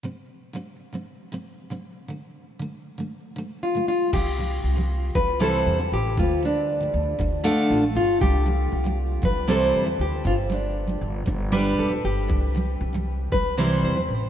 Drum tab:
CC |--------|--------|x-------|--------|
BD |--------|--------|o---o---|o---o---|

CC |--------|--------|--------|
BD |o---o---|o---o---|o---o---|